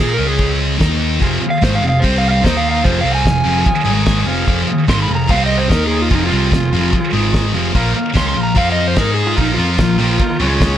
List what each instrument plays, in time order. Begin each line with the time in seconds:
Already playing: picked electric bass A#2, distorted electric guitar A#3 F4 A#4, electric slide guitar G#4
0.14 distorted electric guitar C#3, electric slide guitar A#4
0.18 picked electric bass C#2, distorted electric guitar G#3 C#4
0.27 electric slide guitar G#4
0.39 kick, crash
0.78 picked electric bass D#2, distorted electric guitar D#3 A#3 D#4, kick, snare, crash
1.20 picked electric bass F1, distorted electric guitar F2 C3 F3, transistor combo organ F4 G#4 C5, kick, crash
1.41 transistor combo organ F4 G#4 C5, muted picked electric bass stroke, muted distorted electric guitar stroke
1.50 electric slide guitar F5
1.61 picked electric bass G#1, distorted electric guitar G#2 D#3 G#3, transistor combo organ F4 G#4 C5, electric slide guitar C5, kick, snare, crash
1.75 electric slide guitar F5
1.81 picked electric bass F1, distorted electric guitar F2 C3, transistor combo organ F4 G#4 D#5
1.89 electric slide guitar F5
2.00 picked electric bass C2, distorted electric guitar C3 G3 C4, transistor combo organ C4 G4 C5, electric slide guitar C5, kick
2.04 crash
2.18 electric slide guitar F5
2.23 transistor combo organ C4 G4 C5
2.31 electric slide guitar F5
2.42 picked electric bass D#2, distorted electric guitar D#3 A#3 D#4, transistor combo organ D#4 A#4 D#5, electric slide guitar C5, kick, crash
2.46 snare
2.57 electric slide guitar F5
2.62 transistor combo organ D#4 A#4 C5
2.71 electric slide guitar F5
2.83 picked electric bass F1, distorted electric guitar F2 C3 F3, transistor combo organ F4 G#4 C5, electric slide guitar C5, kick, crash
3.01 picked electric bass C2, distorted electric guitar C3, electric slide guitar F5
3.05 distorted electric guitar G3 C4, transistor combo organ F4 G#4 C5
3.15 electric slide guitar G#5
3.24 picked electric bass F1, distorted electric guitar F2 C3, transistor combo organ F4 G#4 C5, kick, snare, crash
3.43 picked electric bass F1, distorted electric guitar F2 C3 F3, transistor combo organ F4 G#4 C5
3.64 transistor combo organ F4 G#4 D#5, muted distorted electric guitar stroke, muted picked electric bass stroke, kick, crash
3.84 picked electric bass G#1, distorted electric guitar G#2 D#3 G#3, transistor combo organ D#4 G#4 D#5 G#5
4.05 transistor combo organ G#5, kick, snare, crash
4.26 picked electric bass F1, distorted electric guitar F2 C3 F3, transistor combo organ F4 G#4 C5 F5
4.46 picked electric bass F1, distorted electric guitar F2 C3 F3, kick, crash
4.67 transistor combo organ F4 G#4 D#5, muted picked electric bass stroke, muted distorted electric guitar stroke
4.88 picked electric bass G#1, distorted electric guitar G#2 D#3 G#3, transistor combo organ F4 G#4 C5, electric slide guitar C6, kick, snare, crash
5.03 electric slide guitar B5
5.08 picked electric bass F1, distorted electric guitar F2 C3, transistor combo organ F4 G#4 A#4
5.15 electric slide guitar A#5
5.28 picked electric bass C2, distorted electric guitar C3 G3 C4, transistor combo organ C4 G4 C5, electric slide guitar F5, kick, crash
5.46 electric slide guitar D#5
5.50 transistor combo organ C4 G4 D#5
5.58 electric slide guitar C5
5.68 picked electric bass D#2, distorted electric guitar D#3 A#3 D#4, transistor combo organ D#4 A#4 D#5, electric slide guitar A#4, kick, snare, crash
5.87 electric slide guitar G#4, transistor combo organ A#4 C5
5.91 transistor combo organ D#4
6.02 electric slide guitar F4
6.09 picked electric bass F1, distorted electric guitar F2 C3 F3, transistor combo organ F4 G#4 C5, kick, crash
6.15 electric slide guitar D#4
6.27 distorted electric guitar C3 G3, electric slide guitar F4
6.31 picked electric bass C2, distorted electric guitar C4, transistor combo organ F4 G#4 C5
6.51 picked electric bass F1, distorted electric guitar F2 C3, transistor combo organ F4 G#4 C5, kick, snare, crash
6.73 picked electric bass F1, distorted electric guitar F2 C3 F3, transistor combo organ F4 G#4 C5
6.93 transistor combo organ F4 G#4 C5, muted picked electric bass stroke, muted distorted electric guitar stroke, kick, crash
7.12 picked electric bass G#1, distorted electric guitar G#2 D#3 G#3, transistor combo organ D#4 G#4 D#5
7.34 kick, snare, crash
7.53 picked electric bass F1, distorted electric guitar F2 C3 F3, transistor combo organ F4 G#4 C5
7.73 picked electric bass A#1, distorted electric guitar A#2 F3 A#3, transistor combo organ F4 A#4 F5, kick, crash
7.96 transistor combo organ F4 A#4 F5, muted picked electric bass stroke, muted distorted electric guitar stroke
8.13 picked electric bass C#2, distorted electric guitar C#3 G#3 C#4, transistor combo organ F4 A#4 G5, electric slide guitar C6, kick, snare, crash
8.29 electric slide guitar C6
8.35 picked electric bass A#1, distorted electric guitar A#2 F3, transistor combo organ F4 A#4 F5
8.43 electric slide guitar A#5
8.55 picked electric bass F2, distorted electric guitar F3 C4 F4, transistor combo organ F4 C5 F5, electric slide guitar F5, kick, crash
8.72 transistor combo organ F4 C5, electric slide guitar D#5
8.76 transistor combo organ F5
8.88 electric slide guitar C5
8.96 picked electric bass G#2, distorted electric guitar G#3 D#4 G#4, transistor combo organ D#4 G#4 D#5, kick, snare, crash
9.01 electric slide guitar A#4
9.14 transistor combo organ D#4 G#4 D#5, electric slide guitar G#4
9.27 electric slide guitar F4
9.36 picked electric bass A#1, distorted electric guitar A#2 F3 A#3, transistor combo organ F4 A#4 F5, kick, crash
9.41 electric slide guitar D#4
9.54 picked electric bass F2, distorted electric guitar F3, electric slide guitar F4, transistor combo organ F4 C5
9.58 distorted electric guitar C4 F4, transistor combo organ A#4
9.78 picked electric bass A#1, distorted electric guitar A#2 F3, transistor combo organ F4 A#4 F5, kick, snare, crash
9.97 picked electric bass A#1, distorted electric guitar A#2 F3 A#3, transistor combo organ F4 A#4 G5
10.19 transistor combo organ F4 A#4 F5, muted picked electric bass stroke, muted distorted electric guitar stroke, kick, crash
10.39 picked electric bass C#2, distorted electric guitar C#3 G#3 C#4, transistor combo organ C#4 G#4 C#5
10.61 kick, snare, crash